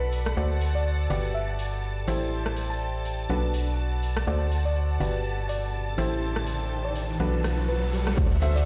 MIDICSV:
0, 0, Header, 1, 8, 480
1, 0, Start_track
1, 0, Key_signature, 1, "major"
1, 0, Tempo, 487805
1, 364, Time_signature, 4, 2, 24, 8
1, 8515, End_track
2, 0, Start_track
2, 0, Title_t, "String machine"
2, 0, Program_c, 0, 50
2, 0, Note_on_c, 0, 83, 75
2, 0, Note_on_c, 0, 95, 71
2, 365, Note_on_c, 0, 81, 76
2, 365, Note_on_c, 0, 93, 76
2, 375, Note_off_c, 0, 83, 0
2, 375, Note_off_c, 0, 95, 0
2, 8044, Note_on_c, 0, 76, 83
2, 8045, Note_on_c, 0, 88, 82
2, 8055, Note_off_c, 0, 81, 0
2, 8055, Note_off_c, 0, 93, 0
2, 8515, Note_off_c, 0, 76, 0
2, 8515, Note_off_c, 0, 88, 0
2, 8515, End_track
3, 0, Start_track
3, 0, Title_t, "String section"
3, 0, Program_c, 1, 48
3, 0, Note_on_c, 1, 69, 81
3, 0, Note_on_c, 1, 74, 78
3, 0, Note_on_c, 1, 78, 78
3, 2044, Note_off_c, 1, 78, 0
3, 2592, Note_on_c, 1, 79, 66
3, 3244, Note_off_c, 1, 79, 0
3, 3682, Note_on_c, 1, 78, 68
3, 4190, Note_off_c, 1, 69, 0
3, 4202, Note_on_c, 1, 69, 70
3, 5884, Note_off_c, 1, 78, 0
3, 6431, Note_on_c, 1, 79, 66
3, 7084, Note_off_c, 1, 79, 0
3, 7085, Note_off_c, 1, 74, 0
3, 7461, Note_on_c, 1, 78, 63
3, 7484, Note_on_c, 1, 74, 64
3, 8515, Note_off_c, 1, 69, 0
3, 8515, Note_off_c, 1, 74, 0
3, 8515, Note_off_c, 1, 78, 0
3, 8515, End_track
4, 0, Start_track
4, 0, Title_t, "FM electric piano"
4, 0, Program_c, 2, 5
4, 0, Note_on_c, 2, 71, 80
4, 363, Note_off_c, 2, 71, 0
4, 738, Note_on_c, 2, 74, 79
4, 880, Note_off_c, 2, 74, 0
4, 1323, Note_on_c, 2, 76, 81
4, 1487, Note_off_c, 2, 76, 0
4, 2658, Note_on_c, 2, 81, 86
4, 3139, Note_off_c, 2, 81, 0
4, 4579, Note_on_c, 2, 74, 79
4, 4720, Note_off_c, 2, 74, 0
4, 5403, Note_on_c, 2, 74, 83
4, 5567, Note_off_c, 2, 74, 0
4, 6738, Note_on_c, 2, 74, 85
4, 6880, Note_off_c, 2, 74, 0
4, 7562, Note_on_c, 2, 71, 79
4, 8043, Note_off_c, 2, 71, 0
4, 8418, Note_on_c, 2, 74, 89
4, 8515, Note_off_c, 2, 74, 0
4, 8515, End_track
5, 0, Start_track
5, 0, Title_t, "Grand piano"
5, 0, Program_c, 3, 0
5, 0, Note_on_c, 3, 62, 70
5, 0, Note_on_c, 3, 66, 67
5, 0, Note_on_c, 3, 69, 65
5, 0, Note_on_c, 3, 71, 77
5, 338, Note_off_c, 3, 62, 0
5, 339, Note_off_c, 3, 66, 0
5, 339, Note_off_c, 3, 69, 0
5, 339, Note_off_c, 3, 71, 0
5, 364, Note_on_c, 3, 66, 69
5, 364, Note_on_c, 3, 69, 62
5, 364, Note_on_c, 3, 72, 60
5, 364, Note_on_c, 3, 74, 76
5, 1059, Note_off_c, 3, 66, 0
5, 1059, Note_off_c, 3, 69, 0
5, 1059, Note_off_c, 3, 72, 0
5, 1059, Note_off_c, 3, 74, 0
5, 1084, Note_on_c, 3, 66, 66
5, 1084, Note_on_c, 3, 67, 65
5, 1084, Note_on_c, 3, 71, 65
5, 1084, Note_on_c, 3, 74, 76
5, 2019, Note_off_c, 3, 66, 0
5, 2019, Note_off_c, 3, 67, 0
5, 2019, Note_off_c, 3, 71, 0
5, 2019, Note_off_c, 3, 74, 0
5, 2043, Note_on_c, 3, 64, 70
5, 2043, Note_on_c, 3, 67, 68
5, 2043, Note_on_c, 3, 69, 70
5, 2043, Note_on_c, 3, 72, 82
5, 3218, Note_off_c, 3, 64, 0
5, 3218, Note_off_c, 3, 67, 0
5, 3218, Note_off_c, 3, 69, 0
5, 3219, Note_off_c, 3, 72, 0
5, 3244, Note_on_c, 3, 62, 69
5, 3244, Note_on_c, 3, 66, 66
5, 3244, Note_on_c, 3, 69, 63
5, 3244, Note_on_c, 3, 71, 83
5, 4179, Note_off_c, 3, 62, 0
5, 4179, Note_off_c, 3, 66, 0
5, 4179, Note_off_c, 3, 69, 0
5, 4179, Note_off_c, 3, 71, 0
5, 4203, Note_on_c, 3, 66, 73
5, 4203, Note_on_c, 3, 69, 65
5, 4203, Note_on_c, 3, 72, 64
5, 4203, Note_on_c, 3, 74, 80
5, 4899, Note_off_c, 3, 66, 0
5, 4899, Note_off_c, 3, 69, 0
5, 4899, Note_off_c, 3, 72, 0
5, 4899, Note_off_c, 3, 74, 0
5, 4924, Note_on_c, 3, 66, 74
5, 4924, Note_on_c, 3, 67, 64
5, 4924, Note_on_c, 3, 71, 65
5, 4924, Note_on_c, 3, 74, 74
5, 5859, Note_off_c, 3, 66, 0
5, 5859, Note_off_c, 3, 67, 0
5, 5859, Note_off_c, 3, 71, 0
5, 5859, Note_off_c, 3, 74, 0
5, 5884, Note_on_c, 3, 64, 75
5, 5884, Note_on_c, 3, 67, 72
5, 5884, Note_on_c, 3, 69, 68
5, 5884, Note_on_c, 3, 72, 85
5, 7059, Note_off_c, 3, 64, 0
5, 7059, Note_off_c, 3, 67, 0
5, 7059, Note_off_c, 3, 69, 0
5, 7059, Note_off_c, 3, 72, 0
5, 7083, Note_on_c, 3, 66, 65
5, 7083, Note_on_c, 3, 69, 67
5, 7084, Note_on_c, 3, 62, 71
5, 7084, Note_on_c, 3, 71, 81
5, 8019, Note_off_c, 3, 62, 0
5, 8019, Note_off_c, 3, 66, 0
5, 8019, Note_off_c, 3, 69, 0
5, 8019, Note_off_c, 3, 71, 0
5, 8044, Note_on_c, 3, 66, 73
5, 8044, Note_on_c, 3, 69, 67
5, 8044, Note_on_c, 3, 72, 67
5, 8044, Note_on_c, 3, 74, 81
5, 8153, Note_off_c, 3, 69, 0
5, 8154, Note_off_c, 3, 66, 0
5, 8154, Note_off_c, 3, 72, 0
5, 8154, Note_off_c, 3, 74, 0
5, 8284, Note_on_c, 3, 66, 72
5, 8284, Note_on_c, 3, 69, 69
5, 8284, Note_on_c, 3, 72, 72
5, 8284, Note_on_c, 3, 76, 80
5, 8515, Note_off_c, 3, 66, 0
5, 8515, Note_off_c, 3, 69, 0
5, 8515, Note_off_c, 3, 72, 0
5, 8515, Note_off_c, 3, 76, 0
5, 8515, End_track
6, 0, Start_track
6, 0, Title_t, "FM bass"
6, 0, Program_c, 4, 39
6, 0, Note_on_c, 4, 35, 81
6, 343, Note_off_c, 4, 35, 0
6, 364, Note_on_c, 4, 38, 83
6, 1063, Note_off_c, 4, 38, 0
6, 1083, Note_on_c, 4, 31, 88
6, 2023, Note_off_c, 4, 31, 0
6, 2043, Note_on_c, 4, 33, 85
6, 3223, Note_off_c, 4, 33, 0
6, 3243, Note_on_c, 4, 35, 81
6, 4183, Note_off_c, 4, 35, 0
6, 4203, Note_on_c, 4, 38, 84
6, 4903, Note_off_c, 4, 38, 0
6, 4922, Note_on_c, 4, 31, 84
6, 5862, Note_off_c, 4, 31, 0
6, 5883, Note_on_c, 4, 33, 86
6, 7063, Note_off_c, 4, 33, 0
6, 7083, Note_on_c, 4, 35, 83
6, 8023, Note_off_c, 4, 35, 0
6, 8044, Note_on_c, 4, 38, 96
6, 8515, Note_off_c, 4, 38, 0
6, 8515, End_track
7, 0, Start_track
7, 0, Title_t, "Riser"
7, 0, Program_c, 5, 103
7, 4203, Note_on_c, 5, 60, 69
7, 8044, Note_off_c, 5, 60, 0
7, 8515, End_track
8, 0, Start_track
8, 0, Title_t, "Drums"
8, 123, Note_on_c, 9, 46, 89
8, 222, Note_off_c, 9, 46, 0
8, 258, Note_on_c, 9, 37, 58
8, 357, Note_off_c, 9, 37, 0
8, 367, Note_on_c, 9, 54, 57
8, 465, Note_off_c, 9, 54, 0
8, 498, Note_on_c, 9, 54, 35
8, 596, Note_off_c, 9, 54, 0
8, 604, Note_on_c, 9, 46, 91
8, 702, Note_off_c, 9, 46, 0
8, 736, Note_on_c, 9, 54, 72
8, 835, Note_off_c, 9, 54, 0
8, 844, Note_on_c, 9, 54, 53
8, 942, Note_off_c, 9, 54, 0
8, 977, Note_on_c, 9, 54, 36
8, 1076, Note_off_c, 9, 54, 0
8, 1084, Note_on_c, 9, 46, 82
8, 1182, Note_off_c, 9, 46, 0
8, 1219, Note_on_c, 9, 54, 74
8, 1317, Note_off_c, 9, 54, 0
8, 1329, Note_on_c, 9, 54, 58
8, 1427, Note_off_c, 9, 54, 0
8, 1457, Note_on_c, 9, 54, 34
8, 1556, Note_off_c, 9, 54, 0
8, 1563, Note_on_c, 9, 46, 98
8, 1662, Note_off_c, 9, 46, 0
8, 1706, Note_on_c, 9, 54, 68
8, 1802, Note_off_c, 9, 54, 0
8, 1802, Note_on_c, 9, 54, 57
8, 1901, Note_off_c, 9, 54, 0
8, 1940, Note_on_c, 9, 54, 35
8, 2039, Note_off_c, 9, 54, 0
8, 2044, Note_on_c, 9, 46, 85
8, 2142, Note_off_c, 9, 46, 0
8, 2184, Note_on_c, 9, 54, 77
8, 2280, Note_off_c, 9, 54, 0
8, 2280, Note_on_c, 9, 54, 51
8, 2378, Note_off_c, 9, 54, 0
8, 2418, Note_on_c, 9, 54, 31
8, 2419, Note_on_c, 9, 37, 59
8, 2516, Note_off_c, 9, 54, 0
8, 2517, Note_off_c, 9, 37, 0
8, 2523, Note_on_c, 9, 46, 93
8, 2622, Note_off_c, 9, 46, 0
8, 2667, Note_on_c, 9, 54, 62
8, 2758, Note_off_c, 9, 54, 0
8, 2758, Note_on_c, 9, 54, 64
8, 2856, Note_off_c, 9, 54, 0
8, 2900, Note_on_c, 9, 54, 30
8, 2999, Note_off_c, 9, 54, 0
8, 3003, Note_on_c, 9, 46, 84
8, 3102, Note_off_c, 9, 46, 0
8, 3137, Note_on_c, 9, 54, 64
8, 3236, Note_off_c, 9, 54, 0
8, 3245, Note_on_c, 9, 54, 63
8, 3343, Note_off_c, 9, 54, 0
8, 3374, Note_on_c, 9, 54, 35
8, 3473, Note_off_c, 9, 54, 0
8, 3483, Note_on_c, 9, 46, 93
8, 3581, Note_off_c, 9, 46, 0
8, 3616, Note_on_c, 9, 54, 67
8, 3714, Note_off_c, 9, 54, 0
8, 3726, Note_on_c, 9, 54, 54
8, 3825, Note_off_c, 9, 54, 0
8, 3855, Note_on_c, 9, 54, 34
8, 3954, Note_off_c, 9, 54, 0
8, 3964, Note_on_c, 9, 46, 80
8, 4062, Note_off_c, 9, 46, 0
8, 4097, Note_on_c, 9, 54, 75
8, 4099, Note_on_c, 9, 37, 64
8, 4196, Note_off_c, 9, 54, 0
8, 4197, Note_off_c, 9, 37, 0
8, 4201, Note_on_c, 9, 54, 55
8, 4300, Note_off_c, 9, 54, 0
8, 4335, Note_on_c, 9, 54, 32
8, 4433, Note_off_c, 9, 54, 0
8, 4444, Note_on_c, 9, 46, 90
8, 4542, Note_off_c, 9, 46, 0
8, 4577, Note_on_c, 9, 54, 70
8, 4675, Note_off_c, 9, 54, 0
8, 4687, Note_on_c, 9, 54, 63
8, 4785, Note_off_c, 9, 54, 0
8, 4820, Note_on_c, 9, 54, 34
8, 4919, Note_off_c, 9, 54, 0
8, 4924, Note_on_c, 9, 46, 76
8, 5022, Note_off_c, 9, 46, 0
8, 5061, Note_on_c, 9, 54, 69
8, 5159, Note_off_c, 9, 54, 0
8, 5168, Note_on_c, 9, 54, 60
8, 5266, Note_off_c, 9, 54, 0
8, 5303, Note_on_c, 9, 54, 33
8, 5402, Note_off_c, 9, 54, 0
8, 5403, Note_on_c, 9, 46, 94
8, 5502, Note_off_c, 9, 46, 0
8, 5542, Note_on_c, 9, 54, 65
8, 5640, Note_off_c, 9, 54, 0
8, 5644, Note_on_c, 9, 54, 59
8, 5743, Note_off_c, 9, 54, 0
8, 5784, Note_on_c, 9, 54, 33
8, 5883, Note_off_c, 9, 54, 0
8, 5884, Note_on_c, 9, 46, 84
8, 5982, Note_off_c, 9, 46, 0
8, 6017, Note_on_c, 9, 54, 73
8, 6115, Note_off_c, 9, 54, 0
8, 6129, Note_on_c, 9, 54, 60
8, 6227, Note_off_c, 9, 54, 0
8, 6256, Note_on_c, 9, 54, 35
8, 6259, Note_on_c, 9, 37, 56
8, 6354, Note_off_c, 9, 54, 0
8, 6357, Note_off_c, 9, 37, 0
8, 6363, Note_on_c, 9, 46, 94
8, 6462, Note_off_c, 9, 46, 0
8, 6497, Note_on_c, 9, 54, 68
8, 6596, Note_off_c, 9, 54, 0
8, 6603, Note_on_c, 9, 54, 52
8, 6701, Note_off_c, 9, 54, 0
8, 6741, Note_on_c, 9, 54, 34
8, 6840, Note_off_c, 9, 54, 0
8, 6844, Note_on_c, 9, 46, 85
8, 6942, Note_off_c, 9, 46, 0
8, 6980, Note_on_c, 9, 54, 73
8, 7078, Note_off_c, 9, 54, 0
8, 7092, Note_on_c, 9, 54, 62
8, 7190, Note_off_c, 9, 54, 0
8, 7219, Note_on_c, 9, 54, 38
8, 7317, Note_off_c, 9, 54, 0
8, 7324, Note_on_c, 9, 37, 55
8, 7324, Note_on_c, 9, 46, 96
8, 7422, Note_off_c, 9, 37, 0
8, 7422, Note_off_c, 9, 46, 0
8, 7453, Note_on_c, 9, 54, 68
8, 7552, Note_off_c, 9, 54, 0
8, 7561, Note_on_c, 9, 54, 65
8, 7659, Note_off_c, 9, 54, 0
8, 7700, Note_on_c, 9, 54, 35
8, 7798, Note_off_c, 9, 54, 0
8, 7804, Note_on_c, 9, 46, 83
8, 7902, Note_off_c, 9, 46, 0
8, 7938, Note_on_c, 9, 54, 81
8, 7939, Note_on_c, 9, 37, 57
8, 8036, Note_off_c, 9, 54, 0
8, 8038, Note_off_c, 9, 37, 0
8, 8041, Note_on_c, 9, 42, 89
8, 8044, Note_off_c, 9, 42, 0
8, 8044, Note_on_c, 9, 36, 122
8, 8044, Note_on_c, 9, 42, 57
8, 8044, Note_on_c, 9, 49, 106
8, 8045, Note_on_c, 9, 54, 67
8, 8051, Note_on_c, 9, 82, 42
8, 8142, Note_off_c, 9, 36, 0
8, 8142, Note_off_c, 9, 42, 0
8, 8142, Note_off_c, 9, 49, 0
8, 8143, Note_off_c, 9, 54, 0
8, 8150, Note_off_c, 9, 82, 0
8, 8177, Note_on_c, 9, 42, 47
8, 8177, Note_on_c, 9, 54, 36
8, 8179, Note_off_c, 9, 42, 0
8, 8179, Note_on_c, 9, 42, 28
8, 8187, Note_on_c, 9, 82, 32
8, 8275, Note_off_c, 9, 54, 0
8, 8278, Note_off_c, 9, 42, 0
8, 8279, Note_on_c, 9, 42, 72
8, 8284, Note_on_c, 9, 46, 108
8, 8285, Note_off_c, 9, 82, 0
8, 8292, Note_on_c, 9, 82, 77
8, 8377, Note_off_c, 9, 42, 0
8, 8382, Note_off_c, 9, 46, 0
8, 8390, Note_off_c, 9, 82, 0
8, 8419, Note_on_c, 9, 42, 57
8, 8420, Note_on_c, 9, 38, 49
8, 8421, Note_on_c, 9, 54, 84
8, 8427, Note_on_c, 9, 82, 33
8, 8515, Note_off_c, 9, 38, 0
8, 8515, Note_off_c, 9, 42, 0
8, 8515, Note_off_c, 9, 54, 0
8, 8515, Note_off_c, 9, 82, 0
8, 8515, End_track
0, 0, End_of_file